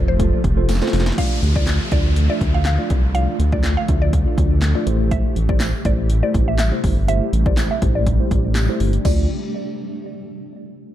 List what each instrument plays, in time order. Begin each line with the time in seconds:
Already playing: analog synth bass F1, ambient pad C3 F3 A3 F4 G4
0.08 synth pluck C5
0.19 tine electric piano F4 A4 C5, kick, closed hi-hat
0.44 analog synth bass F1, kick, closed hi-hat
0.57 tine electric piano F4 A4 C5
0.69 snare, closed hi-hat, tambourine
0.75 snare
0.82 tine electric piano F4 A4 C5, snare
0.87 snare
0.93 analog synth bass F1, snare, open hi-hat
1.00 snare
1.06 snare
1.12 snare
1.18 ambient pad D3 F3 A3 F4 A4, tine electric piano A3 D4 F4 D5, synth pluck F5, kick, closed hi-hat, crash, downlifter
1.43 analog synth bass D2, closed hi-hat
1.55 tine electric piano A3 D4 F4 D5, synth pluck D5, kick
1.67 snare, clap, closed hi-hat
1.92 analog synth bass D2, tine electric piano A3 D4 F4 D5, synth pluck D5, kick, closed hi-hat
2.16 closed hi-hat
2.29 tine electric piano A3 D4 F4 E5, synth pluck D5
2.41 analog synth bass D2, kick, closed hi-hat
2.54 synth pluck F5
2.65 synth pluck F5, snare, clap, closed hi-hat
2.78 tine electric piano A3 D4 F4 D5
2.90 analog synth bass C2, kick, closed hi-hat
3.14 tine electric piano A3 D4 F4 D5, ambient pad G4, synth pluck F5, closed hi-hat
3.39 analog synth bass D2, closed hi-hat
3.52 tine electric piano A3 D4 F4 D5, synth pluck D5, kick
3.63 snare, clap, closed hi-hat
3.77 synth pluck F5
3.88 analog synth bass D2, tine electric piano A3 D4 F4 E5, kick, closed hi-hat
4.02 synth pluck D5
4.13 kick, closed hi-hat
4.26 tine electric piano A3 D4 F4 D5
4.38 analog synth bass D2, kick, closed hi-hat
4.62 snare, clap, closed hi-hat
4.75 tine electric piano A3 D4 F4 D5
4.87 analog synth bass A1, ambient pad C3 G3 E4, tine electric piano A3 E4 G4 C5, closed hi-hat
5.11 synth pluck E5, kick, closed hi-hat
5.36 analog synth bass A1, closed hi-hat
5.49 tine electric piano A3 E4 G4 C5, synth pluck D5, kick
5.60 snare, clap, closed hi-hat, tambourine
5.85 analog synth bass A1, tine electric piano A3 E4 G4 C5, synth pluck D5, kick, closed hi-hat
6.10 closed hi-hat
6.23 tine electric piano A3 E4 G4 C5, synth pluck D5
6.34 analog synth bass A1, kick, closed hi-hat
6.48 synth pluck E5
6.58 synth pluck E5, snare, clap, closed hi-hat, tambourine
6.72 tine electric piano A3 E4 G4 C5
6.84 analog synth bass G1, ambient pad D4, kick, open hi-hat
7.08 tine electric piano A3 E4 G4 C5, synth pluck E5, closed hi-hat
7.33 analog synth bass A1, closed hi-hat
7.46 tine electric piano A3 E4 G4 C5, synth pluck D5, kick
7.57 snare, clap, closed hi-hat, tambourine
7.71 synth pluck E5
7.82 analog synth bass A1, tine electric piano A3 E4 G4 C5, kick, closed hi-hat
7.95 synth pluck D5
8.07 kick, closed hi-hat
8.20 tine electric piano A3 E4 G4 C5
8.31 analog synth bass A1, kick, closed hi-hat
8.55 snare, clap, closed hi-hat, tambourine
8.69 tine electric piano A3 E4 G4 C5
8.80 analog synth bass G1, open hi-hat
8.93 closed hi-hat
9.05 analog synth bass D2, tine electric piano A3 D4 F4 D5, synth pluck D5, kick, crash, tambourine